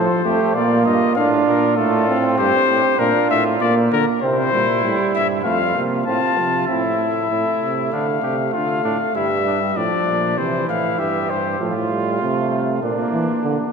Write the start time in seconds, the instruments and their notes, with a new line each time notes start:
Already playing: trombone F3, trumpet A4 C5
0.25 euphonium F2, trombone A3, trumpet G4
0.55 euphonium A#2, trombone A#3, trumpet F4 D5
0.85 euphonium G2, trumpet D#5
1.16 euphonium A2, trombone D4, trumpet F4 F5
1.47 euphonium A#2, trumpet A#4
1.77 euphonium A2, trombone A3, trumpet F4 A4
2.08 trombone C4
2.38 euphonium G2, trumpet G4 C5
2.69 euphonium A2
2.99 euphonium A#2, trombone D4, trumpet F4 A#4
3.30 euphonium A2, trumpet E5
3.61 euphonium A#2, trombone A#3, trumpet D5
3.92 euphonium D3, trumpet A#4
4.21 euphonium C3, trombone C4, trumpet E4 C5
4.53 euphonium A#2, trombone G3
4.83 euphonium A2, trombone G3
5.14 euphonium G2, trumpet E5
5.44 euphonium F2, trombone A3, trumpet F4 F5
5.76 euphonium C3, trombone A#3
6.06 euphonium A2, trombone C4, trumpet F4 A5
6.38 euphonium C3, trombone F3
6.67 euphonium A2, trombone C4, trumpet E4 E5
6.99 trombone A3
7.30 euphonium A2, trumpet E4
7.62 euphonium C3
7.92 euphonium D3, trumpet D4 F5
8.22 euphonium C3, trumpet G4
8.53 euphonium D3, trumpet F4 F5
8.84 euphonium A2, trumpet D4
9.15 euphonium G2, trombone G3, trumpet E4 E5
9.46 trumpet D4
9.76 euphonium A2, trombone F3, trumpet D4 D5
10.08 euphonium A#2
10.37 euphonium C3, trombone E3, trumpet E4 C5
10.68 euphonium A2, trumpet F5
10.99 euphonium G2, trumpet G4 E5
11.30 euphonium G2, trumpet C5
11.60 euphonium A2, trombone F3, trumpet F4
11.90 trombone G3
12.21 euphonium C3, trombone A3
12.82 euphonium A#2, trombone A#3, trumpet D4
13.13 euphonium E3
13.43 euphonium D3